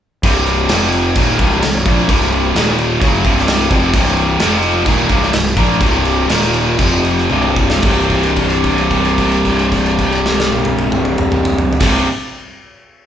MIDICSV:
0, 0, Header, 1, 4, 480
1, 0, Start_track
1, 0, Key_signature, -3, "minor"
1, 0, Tempo, 462250
1, 253, Time_signature, 4, 2, 24, 8
1, 5054, Tempo, 478851
1, 6494, Tempo, 513699
1, 7934, Tempo, 537634
1, 12590, End_track
2, 0, Start_track
2, 0, Title_t, "Distorted electric guitar"
2, 0, Program_c, 0, 30
2, 249, Note_on_c, 0, 36, 81
2, 250, Note_on_c, 0, 43, 82
2, 263, Note_on_c, 0, 48, 100
2, 721, Note_off_c, 0, 48, 0
2, 724, Note_off_c, 0, 36, 0
2, 724, Note_off_c, 0, 43, 0
2, 733, Note_on_c, 0, 48, 87
2, 737, Note_on_c, 0, 41, 88
2, 740, Note_on_c, 0, 53, 113
2, 1201, Note_off_c, 0, 41, 0
2, 1205, Note_on_c, 0, 39, 87
2, 1206, Note_off_c, 0, 48, 0
2, 1209, Note_off_c, 0, 53, 0
2, 1217, Note_on_c, 0, 46, 75
2, 1218, Note_on_c, 0, 51, 83
2, 1442, Note_off_c, 0, 39, 0
2, 1448, Note_off_c, 0, 46, 0
2, 1448, Note_off_c, 0, 51, 0
2, 1452, Note_on_c, 0, 36, 88
2, 1457, Note_on_c, 0, 43, 96
2, 1461, Note_on_c, 0, 48, 86
2, 1677, Note_off_c, 0, 36, 0
2, 1684, Note_off_c, 0, 43, 0
2, 1689, Note_off_c, 0, 48, 0
2, 1690, Note_on_c, 0, 36, 59
2, 1697, Note_on_c, 0, 43, 80
2, 1883, Note_off_c, 0, 36, 0
2, 1886, Note_off_c, 0, 43, 0
2, 1923, Note_on_c, 0, 46, 85
2, 1931, Note_on_c, 0, 53, 99
2, 1939, Note_on_c, 0, 58, 93
2, 2154, Note_off_c, 0, 46, 0
2, 2158, Note_on_c, 0, 36, 96
2, 2159, Note_off_c, 0, 53, 0
2, 2163, Note_on_c, 0, 43, 86
2, 2167, Note_off_c, 0, 58, 0
2, 2172, Note_on_c, 0, 48, 86
2, 2637, Note_off_c, 0, 36, 0
2, 2640, Note_off_c, 0, 43, 0
2, 2644, Note_off_c, 0, 48, 0
2, 2652, Note_on_c, 0, 39, 89
2, 2661, Note_on_c, 0, 46, 109
2, 2662, Note_on_c, 0, 51, 112
2, 3124, Note_off_c, 0, 39, 0
2, 3129, Note_off_c, 0, 46, 0
2, 3129, Note_off_c, 0, 51, 0
2, 3142, Note_on_c, 0, 42, 80
2, 3144, Note_on_c, 0, 49, 96
2, 3146, Note_on_c, 0, 54, 93
2, 3369, Note_off_c, 0, 42, 0
2, 3370, Note_off_c, 0, 49, 0
2, 3371, Note_off_c, 0, 54, 0
2, 3376, Note_on_c, 0, 36, 106
2, 3386, Note_on_c, 0, 43, 99
2, 3391, Note_on_c, 0, 48, 101
2, 3836, Note_off_c, 0, 36, 0
2, 3836, Note_off_c, 0, 48, 0
2, 3840, Note_on_c, 0, 41, 100
2, 3844, Note_off_c, 0, 43, 0
2, 3848, Note_on_c, 0, 48, 99
2, 3849, Note_on_c, 0, 53, 101
2, 4077, Note_off_c, 0, 41, 0
2, 4081, Note_off_c, 0, 48, 0
2, 4081, Note_off_c, 0, 53, 0
2, 4093, Note_on_c, 0, 36, 77
2, 4096, Note_on_c, 0, 43, 87
2, 4109, Note_on_c, 0, 48, 88
2, 4567, Note_off_c, 0, 36, 0
2, 4567, Note_on_c, 0, 41, 99
2, 4572, Note_off_c, 0, 43, 0
2, 4572, Note_off_c, 0, 48, 0
2, 4572, Note_on_c, 0, 48, 110
2, 4582, Note_on_c, 0, 53, 113
2, 5044, Note_off_c, 0, 41, 0
2, 5045, Note_off_c, 0, 48, 0
2, 5048, Note_on_c, 0, 39, 91
2, 5049, Note_on_c, 0, 46, 94
2, 5051, Note_off_c, 0, 53, 0
2, 5057, Note_on_c, 0, 51, 94
2, 5278, Note_off_c, 0, 39, 0
2, 5279, Note_off_c, 0, 46, 0
2, 5282, Note_off_c, 0, 51, 0
2, 5285, Note_on_c, 0, 36, 87
2, 5289, Note_on_c, 0, 43, 104
2, 5292, Note_on_c, 0, 48, 107
2, 5515, Note_off_c, 0, 43, 0
2, 5516, Note_off_c, 0, 36, 0
2, 5519, Note_off_c, 0, 48, 0
2, 5526, Note_on_c, 0, 36, 77
2, 5527, Note_on_c, 0, 43, 76
2, 5715, Note_off_c, 0, 36, 0
2, 5716, Note_off_c, 0, 43, 0
2, 5748, Note_on_c, 0, 46, 88
2, 5758, Note_on_c, 0, 53, 98
2, 5764, Note_on_c, 0, 58, 107
2, 5988, Note_off_c, 0, 46, 0
2, 5994, Note_off_c, 0, 53, 0
2, 5996, Note_off_c, 0, 58, 0
2, 5997, Note_on_c, 0, 36, 82
2, 6003, Note_on_c, 0, 43, 99
2, 6007, Note_on_c, 0, 48, 95
2, 6466, Note_off_c, 0, 36, 0
2, 6470, Note_on_c, 0, 39, 95
2, 6477, Note_off_c, 0, 43, 0
2, 6480, Note_off_c, 0, 48, 0
2, 6481, Note_on_c, 0, 46, 110
2, 6484, Note_on_c, 0, 51, 108
2, 6942, Note_off_c, 0, 39, 0
2, 6947, Note_off_c, 0, 46, 0
2, 6947, Note_on_c, 0, 41, 69
2, 6948, Note_off_c, 0, 51, 0
2, 6950, Note_on_c, 0, 48, 83
2, 6957, Note_on_c, 0, 53, 96
2, 7420, Note_off_c, 0, 41, 0
2, 7422, Note_off_c, 0, 48, 0
2, 7423, Note_on_c, 0, 36, 89
2, 7430, Note_off_c, 0, 53, 0
2, 7431, Note_on_c, 0, 43, 93
2, 7434, Note_on_c, 0, 48, 102
2, 7898, Note_off_c, 0, 36, 0
2, 7910, Note_on_c, 0, 36, 91
2, 7918, Note_off_c, 0, 43, 0
2, 7923, Note_off_c, 0, 48, 0
2, 7930, Note_on_c, 0, 43, 77
2, 7949, Note_on_c, 0, 48, 96
2, 11414, Note_off_c, 0, 36, 0
2, 11423, Note_off_c, 0, 43, 0
2, 11433, Note_off_c, 0, 48, 0
2, 11473, Note_on_c, 0, 36, 81
2, 11495, Note_on_c, 0, 43, 79
2, 11507, Note_on_c, 0, 48, 85
2, 11694, Note_off_c, 0, 36, 0
2, 11705, Note_off_c, 0, 43, 0
2, 11711, Note_off_c, 0, 48, 0
2, 12590, End_track
3, 0, Start_track
3, 0, Title_t, "Picked electric bass"
3, 0, Program_c, 1, 34
3, 240, Note_on_c, 1, 24, 86
3, 692, Note_off_c, 1, 24, 0
3, 734, Note_on_c, 1, 29, 98
3, 1180, Note_off_c, 1, 29, 0
3, 1203, Note_on_c, 1, 27, 81
3, 1431, Note_off_c, 1, 27, 0
3, 1449, Note_on_c, 1, 24, 94
3, 1674, Note_off_c, 1, 24, 0
3, 1704, Note_on_c, 1, 24, 90
3, 1922, Note_off_c, 1, 24, 0
3, 1930, Note_on_c, 1, 34, 93
3, 2154, Note_off_c, 1, 34, 0
3, 2172, Note_on_c, 1, 24, 92
3, 2618, Note_off_c, 1, 24, 0
3, 2652, Note_on_c, 1, 27, 97
3, 3098, Note_off_c, 1, 27, 0
3, 3130, Note_on_c, 1, 30, 85
3, 3354, Note_off_c, 1, 30, 0
3, 3370, Note_on_c, 1, 24, 95
3, 3816, Note_off_c, 1, 24, 0
3, 3847, Note_on_c, 1, 29, 104
3, 4071, Note_off_c, 1, 29, 0
3, 4089, Note_on_c, 1, 24, 98
3, 4535, Note_off_c, 1, 24, 0
3, 4574, Note_on_c, 1, 29, 89
3, 5021, Note_off_c, 1, 29, 0
3, 5049, Note_on_c, 1, 27, 85
3, 5269, Note_off_c, 1, 27, 0
3, 5285, Note_on_c, 1, 24, 92
3, 5506, Note_off_c, 1, 24, 0
3, 5530, Note_on_c, 1, 24, 88
3, 5749, Note_off_c, 1, 24, 0
3, 5757, Note_on_c, 1, 34, 99
3, 5984, Note_off_c, 1, 34, 0
3, 5997, Note_on_c, 1, 24, 84
3, 6454, Note_off_c, 1, 24, 0
3, 6486, Note_on_c, 1, 27, 98
3, 6923, Note_off_c, 1, 27, 0
3, 6948, Note_on_c, 1, 29, 93
3, 7399, Note_off_c, 1, 29, 0
3, 7435, Note_on_c, 1, 24, 103
3, 7896, Note_off_c, 1, 24, 0
3, 7920, Note_on_c, 1, 24, 82
3, 11383, Note_off_c, 1, 24, 0
3, 11471, Note_on_c, 1, 24, 84
3, 11677, Note_off_c, 1, 24, 0
3, 12590, End_track
4, 0, Start_track
4, 0, Title_t, "Drums"
4, 240, Note_on_c, 9, 49, 84
4, 243, Note_on_c, 9, 36, 104
4, 344, Note_off_c, 9, 49, 0
4, 347, Note_off_c, 9, 36, 0
4, 480, Note_on_c, 9, 49, 59
4, 584, Note_off_c, 9, 49, 0
4, 715, Note_on_c, 9, 49, 85
4, 722, Note_on_c, 9, 38, 107
4, 819, Note_off_c, 9, 49, 0
4, 826, Note_off_c, 9, 38, 0
4, 959, Note_on_c, 9, 49, 58
4, 1063, Note_off_c, 9, 49, 0
4, 1198, Note_on_c, 9, 49, 82
4, 1203, Note_on_c, 9, 36, 100
4, 1302, Note_off_c, 9, 49, 0
4, 1307, Note_off_c, 9, 36, 0
4, 1443, Note_on_c, 9, 49, 54
4, 1445, Note_on_c, 9, 36, 96
4, 1547, Note_off_c, 9, 49, 0
4, 1549, Note_off_c, 9, 36, 0
4, 1684, Note_on_c, 9, 49, 77
4, 1692, Note_on_c, 9, 38, 98
4, 1788, Note_off_c, 9, 49, 0
4, 1795, Note_off_c, 9, 38, 0
4, 1927, Note_on_c, 9, 49, 62
4, 1928, Note_on_c, 9, 36, 111
4, 2031, Note_off_c, 9, 49, 0
4, 2032, Note_off_c, 9, 36, 0
4, 2169, Note_on_c, 9, 36, 106
4, 2172, Note_on_c, 9, 49, 77
4, 2273, Note_off_c, 9, 36, 0
4, 2276, Note_off_c, 9, 49, 0
4, 2305, Note_on_c, 9, 38, 35
4, 2408, Note_off_c, 9, 38, 0
4, 2411, Note_on_c, 9, 49, 57
4, 2515, Note_off_c, 9, 49, 0
4, 2655, Note_on_c, 9, 49, 80
4, 2662, Note_on_c, 9, 38, 110
4, 2759, Note_off_c, 9, 49, 0
4, 2766, Note_off_c, 9, 38, 0
4, 2891, Note_on_c, 9, 49, 58
4, 2995, Note_off_c, 9, 49, 0
4, 3131, Note_on_c, 9, 36, 110
4, 3135, Note_on_c, 9, 49, 67
4, 3235, Note_off_c, 9, 36, 0
4, 3238, Note_off_c, 9, 49, 0
4, 3371, Note_on_c, 9, 36, 86
4, 3371, Note_on_c, 9, 49, 53
4, 3475, Note_off_c, 9, 36, 0
4, 3475, Note_off_c, 9, 49, 0
4, 3510, Note_on_c, 9, 38, 33
4, 3610, Note_on_c, 9, 49, 82
4, 3614, Note_off_c, 9, 38, 0
4, 3617, Note_on_c, 9, 38, 114
4, 3714, Note_off_c, 9, 49, 0
4, 3721, Note_off_c, 9, 38, 0
4, 3850, Note_on_c, 9, 36, 104
4, 3854, Note_on_c, 9, 49, 59
4, 3953, Note_off_c, 9, 36, 0
4, 3958, Note_off_c, 9, 49, 0
4, 4087, Note_on_c, 9, 36, 112
4, 4092, Note_on_c, 9, 49, 83
4, 4191, Note_off_c, 9, 36, 0
4, 4196, Note_off_c, 9, 49, 0
4, 4327, Note_on_c, 9, 49, 56
4, 4431, Note_off_c, 9, 49, 0
4, 4564, Note_on_c, 9, 49, 81
4, 4571, Note_on_c, 9, 38, 109
4, 4668, Note_off_c, 9, 49, 0
4, 4675, Note_off_c, 9, 38, 0
4, 4802, Note_on_c, 9, 49, 63
4, 4906, Note_off_c, 9, 49, 0
4, 5047, Note_on_c, 9, 36, 94
4, 5047, Note_on_c, 9, 49, 75
4, 5147, Note_off_c, 9, 49, 0
4, 5148, Note_off_c, 9, 36, 0
4, 5283, Note_on_c, 9, 36, 88
4, 5285, Note_on_c, 9, 49, 54
4, 5383, Note_off_c, 9, 36, 0
4, 5385, Note_off_c, 9, 49, 0
4, 5415, Note_on_c, 9, 38, 34
4, 5515, Note_off_c, 9, 38, 0
4, 5519, Note_on_c, 9, 49, 82
4, 5526, Note_on_c, 9, 38, 120
4, 5620, Note_off_c, 9, 49, 0
4, 5627, Note_off_c, 9, 38, 0
4, 5756, Note_on_c, 9, 36, 96
4, 5759, Note_on_c, 9, 49, 53
4, 5857, Note_off_c, 9, 36, 0
4, 5860, Note_off_c, 9, 49, 0
4, 5996, Note_on_c, 9, 36, 112
4, 5996, Note_on_c, 9, 49, 80
4, 6096, Note_off_c, 9, 36, 0
4, 6096, Note_off_c, 9, 49, 0
4, 6241, Note_on_c, 9, 49, 62
4, 6342, Note_off_c, 9, 49, 0
4, 6486, Note_on_c, 9, 49, 87
4, 6493, Note_on_c, 9, 38, 110
4, 6580, Note_off_c, 9, 49, 0
4, 6586, Note_off_c, 9, 38, 0
4, 6715, Note_on_c, 9, 49, 63
4, 6808, Note_off_c, 9, 49, 0
4, 6945, Note_on_c, 9, 49, 82
4, 6948, Note_on_c, 9, 36, 95
4, 7038, Note_off_c, 9, 49, 0
4, 7041, Note_off_c, 9, 36, 0
4, 7187, Note_on_c, 9, 49, 56
4, 7280, Note_off_c, 9, 49, 0
4, 7312, Note_on_c, 9, 38, 35
4, 7406, Note_off_c, 9, 38, 0
4, 7423, Note_on_c, 9, 48, 57
4, 7516, Note_off_c, 9, 48, 0
4, 7542, Note_on_c, 9, 47, 63
4, 7635, Note_off_c, 9, 47, 0
4, 7672, Note_on_c, 9, 36, 86
4, 7766, Note_off_c, 9, 36, 0
4, 7798, Note_on_c, 9, 38, 90
4, 7892, Note_off_c, 9, 38, 0
4, 7913, Note_on_c, 9, 57, 86
4, 7921, Note_on_c, 9, 36, 108
4, 8003, Note_off_c, 9, 57, 0
4, 8011, Note_off_c, 9, 36, 0
4, 8160, Note_on_c, 9, 57, 44
4, 8162, Note_on_c, 9, 36, 64
4, 8249, Note_off_c, 9, 57, 0
4, 8251, Note_off_c, 9, 36, 0
4, 8279, Note_on_c, 9, 49, 46
4, 8369, Note_off_c, 9, 49, 0
4, 8396, Note_on_c, 9, 57, 48
4, 8402, Note_on_c, 9, 36, 63
4, 8485, Note_off_c, 9, 57, 0
4, 8491, Note_off_c, 9, 36, 0
4, 8517, Note_on_c, 9, 49, 50
4, 8607, Note_off_c, 9, 49, 0
4, 8641, Note_on_c, 9, 57, 50
4, 8645, Note_on_c, 9, 36, 59
4, 8731, Note_off_c, 9, 57, 0
4, 8734, Note_off_c, 9, 36, 0
4, 8768, Note_on_c, 9, 49, 39
4, 8858, Note_off_c, 9, 49, 0
4, 8882, Note_on_c, 9, 57, 44
4, 8884, Note_on_c, 9, 36, 62
4, 8971, Note_off_c, 9, 57, 0
4, 8973, Note_off_c, 9, 36, 0
4, 9008, Note_on_c, 9, 49, 48
4, 9097, Note_off_c, 9, 49, 0
4, 9127, Note_on_c, 9, 36, 62
4, 9130, Note_on_c, 9, 57, 46
4, 9216, Note_off_c, 9, 36, 0
4, 9220, Note_off_c, 9, 57, 0
4, 9247, Note_on_c, 9, 49, 52
4, 9336, Note_off_c, 9, 49, 0
4, 9368, Note_on_c, 9, 36, 60
4, 9369, Note_on_c, 9, 57, 53
4, 9457, Note_off_c, 9, 36, 0
4, 9458, Note_off_c, 9, 57, 0
4, 9492, Note_on_c, 9, 49, 50
4, 9581, Note_off_c, 9, 49, 0
4, 9607, Note_on_c, 9, 36, 60
4, 9609, Note_on_c, 9, 57, 55
4, 9696, Note_off_c, 9, 36, 0
4, 9698, Note_off_c, 9, 57, 0
4, 9732, Note_on_c, 9, 49, 58
4, 9821, Note_off_c, 9, 49, 0
4, 9847, Note_on_c, 9, 36, 61
4, 9849, Note_on_c, 9, 57, 53
4, 9936, Note_off_c, 9, 36, 0
4, 9938, Note_off_c, 9, 57, 0
4, 9969, Note_on_c, 9, 49, 53
4, 10058, Note_off_c, 9, 49, 0
4, 10089, Note_on_c, 9, 38, 87
4, 10178, Note_off_c, 9, 38, 0
4, 10215, Note_on_c, 9, 38, 89
4, 10304, Note_off_c, 9, 38, 0
4, 10327, Note_on_c, 9, 48, 87
4, 10416, Note_off_c, 9, 48, 0
4, 10439, Note_on_c, 9, 48, 92
4, 10528, Note_off_c, 9, 48, 0
4, 10560, Note_on_c, 9, 48, 90
4, 10649, Note_off_c, 9, 48, 0
4, 10680, Note_on_c, 9, 47, 88
4, 10769, Note_off_c, 9, 47, 0
4, 10796, Note_on_c, 9, 47, 85
4, 10885, Note_off_c, 9, 47, 0
4, 10913, Note_on_c, 9, 45, 101
4, 11002, Note_off_c, 9, 45, 0
4, 11035, Note_on_c, 9, 45, 95
4, 11124, Note_off_c, 9, 45, 0
4, 11154, Note_on_c, 9, 45, 110
4, 11244, Note_off_c, 9, 45, 0
4, 11272, Note_on_c, 9, 43, 107
4, 11362, Note_off_c, 9, 43, 0
4, 11399, Note_on_c, 9, 43, 106
4, 11468, Note_on_c, 9, 57, 97
4, 11473, Note_on_c, 9, 36, 109
4, 11474, Note_on_c, 9, 38, 96
4, 11488, Note_off_c, 9, 43, 0
4, 11557, Note_off_c, 9, 57, 0
4, 11562, Note_off_c, 9, 36, 0
4, 11563, Note_off_c, 9, 38, 0
4, 12590, End_track
0, 0, End_of_file